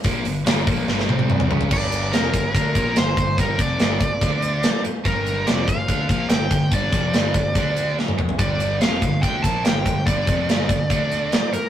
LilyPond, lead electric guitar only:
\new Staff \with { instrumentName = "Lead electric guitar" } { \time 4/4 \key g \minor \tempo 4 = 144 r1 | d''4 bes'4 \tuplet 3/2 { bes'4~ bes'16 bes'16 } c''4 | bes'8 d''2. r8 | bes'4 d''8 f''4. g''4 |
d''2. r4 | d''4 f''4 g''8 a''8 g''4 | d''2.~ d''8 bes'8 | }